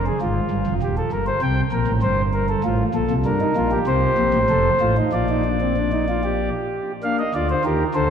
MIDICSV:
0, 0, Header, 1, 2, 480
1, 0, Start_track
1, 0, Tempo, 610376
1, 1125, Time_signature, 3, 2, 24, 8
1, 3050, Tempo, 626959
1, 6282, End_track
2, 0, Start_track
2, 0, Title_t, "Pipe organ"
2, 0, Program_c, 0, 19
2, 0, Note_on_c, 0, 29, 67
2, 0, Note_on_c, 0, 41, 67
2, 49, Note_on_c, 0, 68, 58
2, 81, Note_off_c, 0, 29, 0
2, 81, Note_off_c, 0, 41, 0
2, 152, Note_off_c, 0, 68, 0
2, 168, Note_on_c, 0, 32, 62
2, 169, Note_on_c, 0, 65, 56
2, 171, Note_on_c, 0, 44, 73
2, 317, Note_off_c, 0, 32, 0
2, 319, Note_off_c, 0, 44, 0
2, 400, Note_on_c, 0, 43, 70
2, 404, Note_on_c, 0, 31, 77
2, 506, Note_off_c, 0, 43, 0
2, 508, Note_off_c, 0, 31, 0
2, 524, Note_on_c, 0, 29, 74
2, 525, Note_on_c, 0, 41, 71
2, 580, Note_off_c, 0, 65, 0
2, 628, Note_off_c, 0, 29, 0
2, 629, Note_off_c, 0, 41, 0
2, 647, Note_on_c, 0, 27, 81
2, 647, Note_on_c, 0, 67, 72
2, 648, Note_on_c, 0, 39, 78
2, 750, Note_off_c, 0, 67, 0
2, 767, Note_on_c, 0, 69, 60
2, 795, Note_off_c, 0, 27, 0
2, 796, Note_off_c, 0, 39, 0
2, 870, Note_off_c, 0, 69, 0
2, 881, Note_on_c, 0, 70, 69
2, 882, Note_on_c, 0, 43, 78
2, 885, Note_on_c, 0, 31, 71
2, 986, Note_off_c, 0, 70, 0
2, 996, Note_on_c, 0, 72, 67
2, 1031, Note_off_c, 0, 43, 0
2, 1033, Note_off_c, 0, 31, 0
2, 1103, Note_off_c, 0, 72, 0
2, 1117, Note_on_c, 0, 36, 65
2, 1117, Note_on_c, 0, 48, 73
2, 1117, Note_on_c, 0, 79, 80
2, 1268, Note_off_c, 0, 36, 0
2, 1268, Note_off_c, 0, 48, 0
2, 1268, Note_off_c, 0, 79, 0
2, 1352, Note_on_c, 0, 34, 73
2, 1354, Note_on_c, 0, 46, 71
2, 1356, Note_on_c, 0, 70, 84
2, 1461, Note_off_c, 0, 34, 0
2, 1461, Note_off_c, 0, 46, 0
2, 1472, Note_on_c, 0, 33, 73
2, 1474, Note_on_c, 0, 45, 70
2, 1507, Note_off_c, 0, 70, 0
2, 1580, Note_off_c, 0, 33, 0
2, 1581, Note_off_c, 0, 45, 0
2, 1589, Note_on_c, 0, 72, 78
2, 1591, Note_on_c, 0, 43, 74
2, 1593, Note_on_c, 0, 31, 72
2, 1743, Note_off_c, 0, 72, 0
2, 1834, Note_on_c, 0, 70, 82
2, 1942, Note_off_c, 0, 70, 0
2, 1957, Note_on_c, 0, 69, 77
2, 2011, Note_off_c, 0, 43, 0
2, 2012, Note_off_c, 0, 31, 0
2, 2064, Note_off_c, 0, 69, 0
2, 2077, Note_on_c, 0, 33, 74
2, 2077, Note_on_c, 0, 45, 83
2, 2079, Note_on_c, 0, 65, 82
2, 2229, Note_off_c, 0, 33, 0
2, 2229, Note_off_c, 0, 45, 0
2, 2230, Note_off_c, 0, 65, 0
2, 2314, Note_on_c, 0, 34, 68
2, 2315, Note_on_c, 0, 69, 88
2, 2317, Note_on_c, 0, 46, 79
2, 2422, Note_off_c, 0, 34, 0
2, 2424, Note_off_c, 0, 46, 0
2, 2441, Note_on_c, 0, 36, 74
2, 2445, Note_on_c, 0, 48, 74
2, 2467, Note_off_c, 0, 69, 0
2, 2546, Note_off_c, 0, 36, 0
2, 2548, Note_off_c, 0, 48, 0
2, 2559, Note_on_c, 0, 55, 90
2, 2559, Note_on_c, 0, 70, 74
2, 2561, Note_on_c, 0, 43, 83
2, 2562, Note_on_c, 0, 62, 75
2, 2667, Note_off_c, 0, 62, 0
2, 2680, Note_on_c, 0, 63, 69
2, 2710, Note_off_c, 0, 55, 0
2, 2712, Note_off_c, 0, 43, 0
2, 2786, Note_off_c, 0, 63, 0
2, 2801, Note_on_c, 0, 46, 90
2, 2803, Note_on_c, 0, 65, 76
2, 2805, Note_on_c, 0, 34, 91
2, 2909, Note_off_c, 0, 65, 0
2, 2918, Note_on_c, 0, 67, 74
2, 2953, Note_off_c, 0, 46, 0
2, 2956, Note_off_c, 0, 34, 0
2, 2978, Note_off_c, 0, 70, 0
2, 3042, Note_on_c, 0, 36, 89
2, 3045, Note_on_c, 0, 48, 87
2, 3045, Note_on_c, 0, 72, 73
2, 3192, Note_off_c, 0, 36, 0
2, 3194, Note_off_c, 0, 48, 0
2, 3280, Note_on_c, 0, 34, 81
2, 3280, Note_on_c, 0, 46, 77
2, 3386, Note_off_c, 0, 34, 0
2, 3386, Note_off_c, 0, 46, 0
2, 3402, Note_on_c, 0, 33, 75
2, 3404, Note_on_c, 0, 45, 73
2, 3438, Note_off_c, 0, 67, 0
2, 3508, Note_off_c, 0, 33, 0
2, 3508, Note_off_c, 0, 45, 0
2, 3524, Note_on_c, 0, 29, 85
2, 3525, Note_on_c, 0, 41, 83
2, 3525, Note_on_c, 0, 69, 82
2, 3675, Note_off_c, 0, 29, 0
2, 3675, Note_off_c, 0, 69, 0
2, 3676, Note_off_c, 0, 41, 0
2, 3759, Note_on_c, 0, 33, 74
2, 3762, Note_on_c, 0, 45, 76
2, 3762, Note_on_c, 0, 65, 69
2, 3869, Note_off_c, 0, 65, 0
2, 3874, Note_off_c, 0, 72, 0
2, 3888, Note_on_c, 0, 63, 63
2, 3912, Note_off_c, 0, 33, 0
2, 3914, Note_off_c, 0, 45, 0
2, 3993, Note_off_c, 0, 63, 0
2, 4006, Note_on_c, 0, 46, 68
2, 4006, Note_on_c, 0, 74, 65
2, 4008, Note_on_c, 0, 34, 67
2, 4009, Note_on_c, 0, 65, 62
2, 4115, Note_off_c, 0, 65, 0
2, 4134, Note_on_c, 0, 63, 62
2, 4238, Note_off_c, 0, 63, 0
2, 4250, Note_on_c, 0, 62, 65
2, 4356, Note_off_c, 0, 62, 0
2, 4372, Note_on_c, 0, 60, 60
2, 4478, Note_off_c, 0, 60, 0
2, 4495, Note_on_c, 0, 62, 62
2, 4600, Note_off_c, 0, 62, 0
2, 4616, Note_on_c, 0, 63, 62
2, 4721, Note_off_c, 0, 63, 0
2, 4741, Note_on_c, 0, 65, 63
2, 4844, Note_off_c, 0, 65, 0
2, 4855, Note_on_c, 0, 67, 60
2, 5052, Note_off_c, 0, 46, 0
2, 5052, Note_off_c, 0, 74, 0
2, 5053, Note_off_c, 0, 34, 0
2, 5378, Note_off_c, 0, 67, 0
2, 5462, Note_on_c, 0, 58, 84
2, 5465, Note_on_c, 0, 62, 67
2, 5465, Note_on_c, 0, 77, 65
2, 5568, Note_off_c, 0, 77, 0
2, 5584, Note_on_c, 0, 75, 67
2, 5610, Note_off_c, 0, 58, 0
2, 5612, Note_off_c, 0, 62, 0
2, 5686, Note_off_c, 0, 75, 0
2, 5702, Note_on_c, 0, 74, 71
2, 5704, Note_on_c, 0, 50, 85
2, 5705, Note_on_c, 0, 65, 67
2, 5706, Note_on_c, 0, 38, 88
2, 5803, Note_off_c, 0, 74, 0
2, 5820, Note_on_c, 0, 72, 70
2, 5849, Note_off_c, 0, 50, 0
2, 5850, Note_off_c, 0, 65, 0
2, 5851, Note_off_c, 0, 38, 0
2, 5921, Note_off_c, 0, 72, 0
2, 5935, Note_on_c, 0, 51, 78
2, 5936, Note_on_c, 0, 67, 67
2, 5938, Note_on_c, 0, 39, 84
2, 5939, Note_on_c, 0, 70, 69
2, 6081, Note_off_c, 0, 51, 0
2, 6082, Note_off_c, 0, 67, 0
2, 6083, Note_off_c, 0, 39, 0
2, 6084, Note_off_c, 0, 70, 0
2, 6165, Note_on_c, 0, 38, 84
2, 6165, Note_on_c, 0, 72, 67
2, 6166, Note_on_c, 0, 50, 83
2, 6168, Note_on_c, 0, 69, 68
2, 6269, Note_off_c, 0, 38, 0
2, 6270, Note_off_c, 0, 50, 0
2, 6282, Note_off_c, 0, 69, 0
2, 6282, Note_off_c, 0, 72, 0
2, 6282, End_track
0, 0, End_of_file